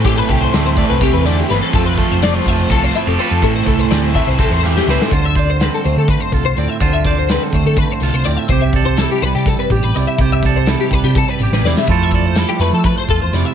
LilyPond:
<<
  \new Staff \with { instrumentName = "Clean electric guitar" } { \time 7/8 \key d \dorian \tempo 4 = 124 g'16 b'16 g'16 c''16 d''16 c''16 d''16 b'16 g'16 b'16 d''16 g'16 b'16 a'16 | a'16 b'16 a'16 c''16 d''16 c''16 e''16 c''16 a'16 c''16 e''16 a'16 b'16 a'16 | a'16 c''16 a'16 c''16 d''16 c''16 e''16 c''16 a'16 c''16 e''16 g'16 b'16 a'16 | c''16 e''16 d''16 c''16 b'16 a'16 c''16 a'16 b'16 c''16 a'16 c''16 d''16 e''16 |
c''16 e''16 d''16 c''16 b'16 a'16 c''16 a'16 b'16 c''16 a'16 c''16 d''16 e''16 | c''16 e''16 d''16 c''16 a'16 g'16 b'16 g'16 a'16 b'16 g'16 b'16 d''16 e''16 | c''16 e''16 d''16 c''16 a'16 g'16 b'16 g'16 a'16 b'16 g'16 b'16 d''16 e''16 | c''16 e''16 d''16 c''16 a'16 g'16 b'16 a'16 b'16 c''16 a'16 c''16 d''16 e''16 | }
  \new Staff \with { instrumentName = "Clean electric guitar" } { \time 7/8 \key d \dorian << { c'4 c'2~ c'8~ | c'4 r4. e'16 g'16 a'8~ | a'4 c'4 c'8 g'8 c''8 | f'8 c''8 c'4. f'8 c'8 |
f'8 c''8 c'4. f'8 c'8 | g'8 a'8 e'4. g'8 e'8 | g'8 a'8 e'4. g'8 e'8 | <a e' f' a'>8 a'8 e'4. f'8 e'8 | } \\ { a,8 a4 a8 c8 d8 e8 | f8 a4 a2 | a,8 a4 a2 | d4. a4. a,8 |
d4. a4. a,8 | c4. g4. c8 | c4. g4. c8 | f4. a4. c8 | } >> }
  \new Staff \with { instrumentName = "Overdriven electric guitar" } { \time 7/8 \key d \dorian <a, e a c' e'>8 <a c' e'>8 <e a c' e'>8 <a, e a c' e'>8 <e a c' e'>8 <a, e a c' e'>8 <e a c' e'>8 | <f a c' f'>8 <a c' f'>8 <f a c' f'>8 <f a c' f'>8 <f a c' f'>8 <f a c' f'>8 <f a c' f'>8 | <a, e a c' e'>8 <a c' e'>8 <e a c' e'>8 <a, e a c' e'>8 <e a c' e'>8 <a, e a c' e'>8 <e a c' e'>8 | r2. r8 |
r2. r8 | r2. r8 | r2. r8 | r2. r8 | }
  \new Staff \with { instrumentName = "Picked electric bass" } { \clef bass \time 7/8 \key d \dorian a,8 c,8 d,8. c,8 e,8. g,,16 r16 | f,,8. f,,8. f,,8 c,8 r16 f,,16 r16 f,16 | a,,8 c,8 d,8. c,8 e,8. cis,16 r16 | d,4. d,16 d8 r16 c,16 c,16 d,16 r16 |
d,4. d,16 d8 r16 c,16 c,16 d,16 r16 | c,4. c,16 c8 r16 a,,16 a,,16 c,16 r16 | c,4. c,16 c8 r16 a,,16 a,,16 e,16 r16 | f,4. f,16 f8 r16 e,16 e,16 f,16 r16 | }
  \new DrumStaff \with { instrumentName = "Drums" } \drummode { \time 7/8 <hh bd>8 <hh bd>8 <hh sn>8 <hh bd>8 <hh bd sn>8 hh8 <hh sn>8 | <hh bd>8 <hh bd>8 <hh sn>8 <hh bd sn>8 <hh bd>8 hh8 hh8 | <hh bd>8 <hh bd>8 <hh sn>8 <hh bd>8 <hh bd>8 <hh sn>16 sn16 sn16 sn16 | <hh bd>8 <hh bd>8 <hh sn>8 hh8 <hh bd>8 <hh bd>8 hh8 |
<hh bd>8 <hh bd>8 <hh sn>8 <hh bd>8 <hh bd>8 <hh sn>8 hh8 | <hh bd>8 <hh bd>8 <hh sn>8 hh8 <hh bd sn>8 <hh bd>8 hh8 | <hh bd>8 <hh bd sn>8 <hh sn>8 <hh bd>8 <hh bd>8 hh16 sn16 sn16 sn16 | <hh bd>8 <hh bd>8 <hh sn>8 <hh sn>8 <hh bd sn>8 <hh bd>8 <hh sn>8 | }
>>